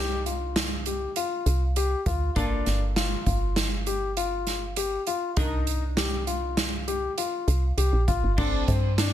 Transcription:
Already playing: C2 D4 D#4 G4 A#4
0.26 F4, closed hi-hat
0.56 snare, closed hi-hat
0.86 G4, closed hi-hat
1.16 F4, closed hi-hat
1.46 C2, closed hi-hat
1.76 G4, closed hi-hat
2.06 D2 F4, kick, closed hi-hat
2.36 G1 A#3 D4 F4 A4, kick, closed hi-hat
2.66 G1, snare, closed hi-hat
2.96 F4, snare, closed hi-hat
3.26 G1 F4, kick, closed hi-hat
3.56 snare, closed hi-hat
3.87 G4, closed hi-hat
4.17 F4, closed hi-hat
4.47 snare, closed hi-hat
4.76 G4, closed hi-hat
5.07 F4, closed hi-hat
5.37 C2 D4 D#4 A#4, kick, closed hi-hat
5.67 closed hi-hat
5.97 G4, snare, closed hi-hat
6.27 F4, closed hi-hat
6.57 snare, closed hi-hat
6.88 G4, closed hi-hat
7.18 F4, closed hi-hat
7.48 C2, closed hi-hat
7.77 C2 G4, closed hi-hat
7.93 A#1
8.08 A1 F4, kick, closed hi-hat
8.24 G1
8.37 G1 C4 D4 A4, kick, crash
8.68 G2 C4, kick, closed hi-hat
8.98 D4, snare, closed hi-hat

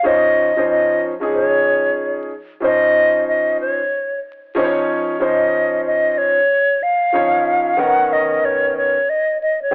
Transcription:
0.03 F3 C#4 D#4 C5 D#5
0.57 F3 C#4 D#4 C5
0.70 D#5
1.20 F3 C#4 D#4 G#4
1.34 C#5
2.60 F3 C#4 D#4 C5
2.65 D#5
3.29 D#5
3.60 C#5
4.55 F3 C#4 D#4 C5
4.64 C#5
5.19 F3 C#4 D#4 C5 D#5
5.87 D#5
6.18 C#5
6.83 F5
7.13 F3 C#4 D#4 C#5
7.77 D#3 B3 C#4 A#4 F#5
8.13 D#5
8.45 C#5
8.77 C#5
9.10 D#5
9.41 D#5
9.62 C#5
9.71 D#3

